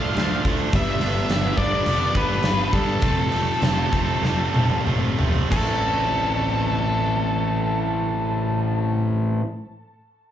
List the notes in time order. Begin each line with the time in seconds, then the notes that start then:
Already playing: D3 F3 A3 D4 F4 F5
0.16 D2 D3 F3 A3 D4 F4, snare, open hi-hat
0.45 D2 D3 F3 A3 D4 F4, kick, open hi-hat
0.72 G1 G2 D3 G3 B3 D4 G4 E5, kick, open hi-hat
0.99 G1 G2 D3 G3 B3 D4 G4, open hi-hat
1.28 G1 G2 D3 G3 B3 D4 G4, snare, open hi-hat
1.56 G1 G2 D3 G3 B3 D4 G4 D5, kick, open hi-hat
1.86 F1 G2 D3 G3 B3 D4 G4, open hi-hat
2.14 G1 G2 D3 G3 B3 D4 G4 B4, kick, open hi-hat
2.43 G1 G2 D3 G3 B3 D4 G4, snare, open hi-hat
2.72 G2 D3 G3 B3 D4 G4 A4, kick, open hi-hat
3.01 F1 F2 C3 F3 A3 C4 F4, kick, open hi-hat
3.31 F2 C3 F3 A3 C4 F4, open hi-hat
3.61 F1 F2 C3 F3 A3 C4 F4, snare, open hi-hat
3.92 F1 F2 C3 F3 A3 C4 F4, kick, open hi-hat
4.22 F1 F2 C3 F3 A3 C4 F4, snare
4.54 F1 F2 C3 F3 A3 C4 F4, high tom
4.70 high tom
4.85 F1 F2 C3 F3 A3 C4 F4, mid tom
5.16 F1 F2 C3 F3 A3 C4 F4, floor tom
5.35 floor tom
5.49 A1 A2 E3 A3 C4 A4, kick, crash
5.53 E4